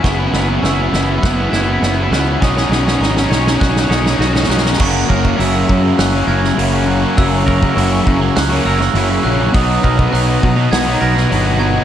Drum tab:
CC |--------------------------------|--------------------------------|x-------------------------------|--------------------------------|
HH |--------------------------------|--------------------------------|--------o-------o-------o-------|o-------o-------o-------o-------|
SD |o---o---o---o---o---o---o---o---|o-o-o-o-o-o-o-o-o-o-o-o-o-oooooo|----------------o-----o---------|----------------o-----o---------|
BD |o---------------o---------------|o---------------o---------------|o---o-o-----o-------------------|o---o-o-----o-------------------|

CC |--------------------------------|
HH |o-------o-------o-------o-------|
SD |----------------o-----o---------|
BD |o---o-o-----o-------------------|